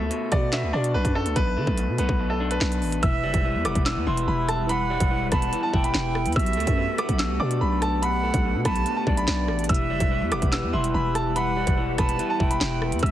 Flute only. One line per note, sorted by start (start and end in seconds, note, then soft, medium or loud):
3.03 3.82 E5 loud
4.69 5.28 F#5 loud
5.32 5.71 A5 medium
5.74 6.32 G5 medium
6.36 7.15 E5 loud
8.03 8.61 F#5 loud
8.65 9.04 A5 loud
9.07 9.66 D5 medium
9.69 10.49 E5 loud
11.36 11.95 F#5 loud
11.98 12.38 A5 medium
12.40 12.99 G5 medium
13.03 13.11 E5 loud